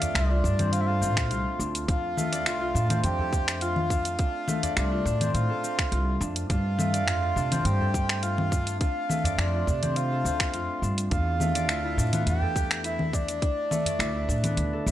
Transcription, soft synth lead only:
0.00 0.16 F5 loud
0.14 0.72 D5 medium
0.72 0.82 F5 medium
0.80 0.88 E5 medium
0.86 1.59 F5 loud
1.89 3.00 F5 loud
3.04 3.63 G5 loud
3.62 4.19 F5 loud
4.19 4.73 F5 loud
4.77 5.30 D5 medium
5.34 6.17 F5 loud
6.50 7.67 F5 loud
7.66 8.22 G5 loud
8.23 8.77 F5 loud
8.81 9.40 F5 loud
9.39 9.98 D5 medium
9.96 10.83 F5 loud
11.11 12.23 F5 loud
12.27 12.81 G5 loud
12.85 13.15 E5 loud
13.14 14.91 D5 loud

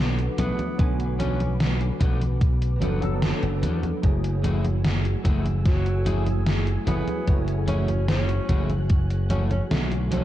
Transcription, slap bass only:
0.00 0.28 B1 medium
0.38 0.52 B1 medium
0.79 1.90 B1 loud
2.00 2.82 B1 medium
2.82 3.32 F#1 loud
3.43 3.64 F#1 medium
3.63 3.90 E2 medium
4.03 5.14 F#1 loud
5.25 6.76 F#1 loud
6.87 7.01 F#1 medium
7.28 8.39 F#1 loud
8.49 9.60 F#1 loud
9.71 10.24 B1 medium

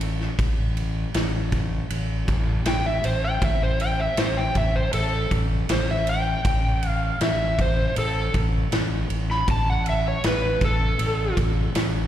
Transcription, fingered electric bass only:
0.00 0.28 A1 medium
0.39 1.04 A1 loud
1.15 1.80 A1 medium
1.90 2.23 A1 medium
2.28 2.61 A1 medium
2.66 2.99 A1 medium
3.04 3.37 A1 medium
3.42 4.07 A1 loud
4.18 4.50 A1 medium
4.56 4.88 A1 medium
4.93 5.26 A1 medium
5.32 5.64 A1 medium
5.70 6.34 A1 medium
6.45 7.10 A1 loud
7.21 7.86 A1 medium
7.97 8.29 A1 loud
8.34 8.67 A1 medium
8.72 9.05 A1 medium
9.10 9.43 A1 medium
9.48 10.13 A1 loud
10.24 10.56 A1 medium
10.62 10.94 A1 medium
10.99 11.32 A1 medium
11.37 11.70 A1 medium
11.75 12.07 A1 medium

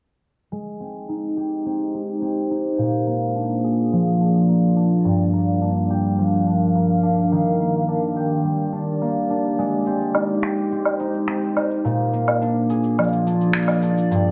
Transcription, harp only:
0.52 6.38 G#3 medium
0.80 1.65 C4 medium
1.09 1.94 D#4 medium
1.37 3.70 G4 medium
1.66 2.21 C4 medium
1.94 2.50 D#4 soft
2.22 5.22 C4 medium
2.51 3.42 D#4 medium
2.78 5.11 A#2 medium
3.07 4.48 A#3 medium
3.36 4.20 D4 medium
3.64 5.96 G#4 medium
3.93 6.18 F3 medium
4.21 4.76 D4 medium
4.49 5.33 A#3 medium
4.76 5.61 D4 medium
5.05 7.37 G2 medium
5.33 6.75 A#3 medium
5.62 6.46 D4 medium
5.90 8.16 G4 medium
6.19 7.37 F3 medium
6.46 7.03 D4 medium
6.75 7.60 A#3 medium
7.03 7.88 D4 medium
7.32 13.95 D#3 medium
7.60 9.01 A#3 medium
7.88 8.72 D4 medium
8.16 10.43 G4 medium
8.44 14.31 G3 medium
8.72 9.30 D4 soft
9.02 12.13 A#3 medium
9.30 10.21 D4 medium
9.59 14.31 G#3 medium
9.87 10.72 C4 medium
10.15 11.00 D#4 medium
10.43 12.76 G4 medium
10.72 11.28 C4 medium
11.00 11.56 D#4 medium
11.28 14.28 C4 medium
11.56 12.47 D#4 medium
11.85 14.16 A#2 medium
12.13 13.54 A#3 medium
12.41 13.26 D4 medium
12.70 14.31 G#4 medium
12.98 14.31 F3 medium
13.27 13.82 D4 medium
13.83 14.31 D4 medium
14.11 14.31 G2 medium

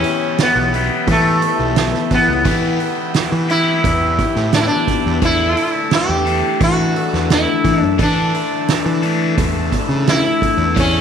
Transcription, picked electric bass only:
0.55 0.88 B1 medium
1.07 1.40 E3 medium
1.59 1.92 B1 medium
2.11 2.27 E3 medium
2.28 2.45 C#2 medium
2.45 2.78 E3 medium
3.32 3.80 E3 medium
3.85 4.17 E2 medium
4.36 4.68 A2 medium
5.06 5.21 E2 medium
5.22 5.54 E2 medium
6.09 6.41 E2 medium
6.61 6.93 E3 medium
7.13 7.45 E2 medium
7.65 7.81 E3 medium
7.82 7.98 F#2 medium
7.99 8.31 E3 medium
8.86 9.34 E3 medium
9.38 9.69 E2 medium
9.89 10.21 C#3 medium
10.57 10.74 E2 medium
10.77 11.01 E2 medium

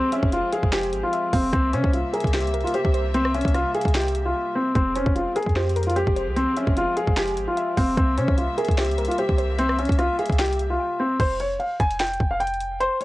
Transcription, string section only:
0.00 1.50 F3 medium
0.00 1.50 G#3 medium
0.00 1.50 C4 medium
1.53 4.72 C3 medium
1.53 4.72 G3 medium
1.53 4.72 A#3 medium
1.53 4.72 E5 medium
4.75 7.94 F3 medium
4.75 7.94 G#3 medium
4.75 7.94 C4 medium
7.97 11.16 C3 medium
7.97 11.16 G3 medium
7.97 11.16 A#3 medium
7.97 11.16 E5 medium

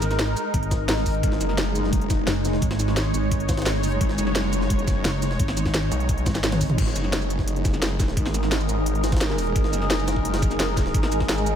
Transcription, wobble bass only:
0.00 0.35 G#1 loud
0.54 1.22 G#1 loud
2.27 2.61 F#1 loud
2.62 3.13 G#1 loud
3.14 3.74 G#1 loud
3.74 3.99 G1 loud
5.05 5.38 F#1 loud
5.40 5.90 G#1 loud
6.26 6.77 G#1 loud

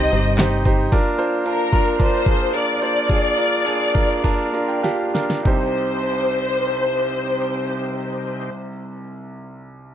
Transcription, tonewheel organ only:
0.00 0.88 C3 medium
0.00 0.88 C4 medium
0.00 0.88 D#4 medium
0.00 0.88 G4 medium
0.92 5.42 A#3 medium
0.92 5.42 D4 medium
0.92 5.41 F4 medium
5.45 8.50 C3 soft
5.45 8.50 C4 soft
5.45 8.50 D#4 soft
5.45 8.50 G4 medium

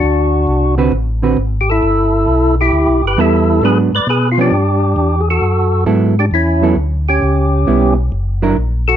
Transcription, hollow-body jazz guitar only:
0.78 0.91 D3 medium
0.78 0.91 C4 medium
0.78 0.92 F#4 medium
0.78 0.92 B4 medium
1.22 1.36 D3 medium
1.22 1.36 C4 medium
1.22 1.36 F#4 medium
1.22 1.37 B4 medium
3.18 3.62 G3 medium
3.18 3.62 B3 medium
3.18 3.63 E4 medium
3.18 3.63 A4 medium
3.63 3.90 F#3 medium
3.63 3.90 B3 medium
3.63 3.91 D4 medium
4.38 4.51 F3 medium
4.38 4.51 B3 medium
4.38 4.51 C#4 medium
5.86 6.14 F#3 medium
5.86 6.14 B3 medium
5.86 6.14 E4 medium
5.86 6.14 A4 medium
6.62 6.75 F#3 medium
6.62 6.75 B3 medium
6.62 6.76 E4 medium
6.62 6.76 A4 medium
7.67 7.94 G3 medium
7.67 7.94 B3 medium
7.67 7.95 E4 medium
8.42 8.55 F#3 medium
8.42 8.55 D4 medium
8.42 8.56 E4 medium
8.42 8.56 A#4 medium

